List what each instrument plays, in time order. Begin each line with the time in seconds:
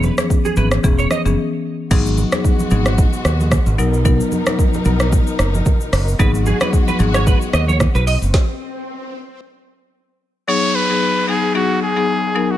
Already playing: marimba E3 B3 C#4 G#4
0.03 clean electric guitar B4, high conga, shaker
0.18 marimba E3 B3 C#4 G#4, cross-stick, high conga, shaker
0.30 kick, shaker
0.45 clean electric guitar G#4, high conga, shaker
0.56 fingered electric bass G#1, marimba E3 B3 C#4 G#4, clean electric guitar B4, high conga, shaker
0.71 cross-stick, shaker
0.84 fingered electric bass E1, marimba E3 B3 C#4 G#4, kick, shaker
0.99 clean electric guitar C#5, shaker
1.11 clean electric guitar D#5, cross-stick, high conga, shaker
1.25 fingered electric bass F#1, marimba E3 B3 C#4 G#4, high conga, shaker
1.91 fingered electric bass G#1, string section B2 G#3 F#4, marimba F#3 B3 D#4 G#4, kick, crash, low conga, shaker
2.06 shaker
2.17 high conga, shaker
2.32 marimba F#3 B3 D#4 G#4, cross-stick, high conga, shaker
2.44 kick, shaker
2.59 high conga, shaker
2.71 fingered electric bass G#1, marimba F#3 B3 D#4 G#4, high conga, shaker
2.86 cross-stick, shaker
2.98 kick, shaker
3.13 shaker
3.25 fingered electric bass D#2, cross-stick, shaker
3.40 high conga, shaker
3.52 kick, cross-stick, low conga, shaker
3.66 fingered electric bass G#1, shaker
3.78 fingered electric bass B1, marimba F#3 B3 D#4 A#4, string section D#4 A#4, shaker
3.94 shaker
4.05 marimba F#3 B3 D#4 A#4, kick, low conga, shaker
4.20 shaker
4.32 high conga, shaker
4.46 marimba F#3 B3 D#4 A#4, cross-stick, high conga, shaker
4.59 kick, shaker
4.74 high conga, shaker
4.85 fingered electric bass B1, marimba F#3 B3 D#4 A#4, high conga, shaker
5.00 cross-stick, shaker
5.12 kick, shaker
5.27 shaker
5.39 fingered electric bass F#1, cross-stick, shaker
5.54 high conga, shaker
5.66 kick, low conga, shaker
5.81 shaker
5.93 fingered electric bass F#1, cross-stick, open hi-hat, shaker
6.08 shaker
6.19 fingered electric bass G#1, marimba F#3 B3 D#4 G#4, string section G#3 F#4, clean electric guitar B4, kick, swell, low conga, shaker
6.35 shaker
6.46 clean electric guitar G#4, high conga, shaker
6.61 marimba F#3 B3 D#4 G#4, clean electric guitar B4, cross-stick, high conga, shaker
6.73 kick, shaker
6.88 clean electric guitar B4, high conga, shaker
6.99 fingered electric bass G#1, marimba F#3 B3 D#4 G#4, high conga, shaker
7.14 clean electric guitar C#5, cross-stick, shaker
7.27 clean electric guitar B4, kick, shaker
7.42 shaker
7.53 fingered electric bass D#2, clean electric guitar D#5, cross-stick, shaker
7.68 clean electric guitar C#5, high conga, shaker
7.80 kick, cross-stick, low conga, shaker
7.95 fingered electric bass B1, clean electric guitar B4, shaker
8.07 clean electric guitar D#5, open hi-hat, shaker
8.22 fingered electric bass F#1, shaker
8.34 kick, snare
10.48 marimba F#3 B3 D#4 G#4, trumpet C#5, downlifter
10.75 trumpet B4
10.89 marimba F#3 B3 D#4 G#4
11.28 marimba F#3 B3 D#4 G#4, trumpet G#4
11.55 marimba F#3 B3 D#4 G#4, trumpet F#4
11.83 trumpet G#4
11.96 marimba F#3 B3 D#4 G#4
12.35 marimba F#3 B3 D#4 A#4
12.51 trumpet F#4